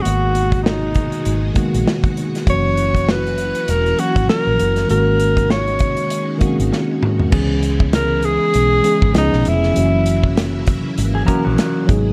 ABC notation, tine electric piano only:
X:1
M:4/4
L:1/8
Q:"Swing 16ths" 1/4=99
K:C#dor
V:1 name="Tine electric piano"
[D,G,A,B,F]2 z3 [D,G,A,B,F]2 z | [E,F,A,CF]2 z3 [E,F,A,CF]2 z | [D,G,A,B,CF]2 z3 [D,G,A,^B,CF]2 z | [E,G,B,CG]2 z3 [E,G,B,CG] [^E,G,B,CG]2 |
[E,F,A,CF]2 z3 [E,F,A,CF]2 [F,G,B,DG] |]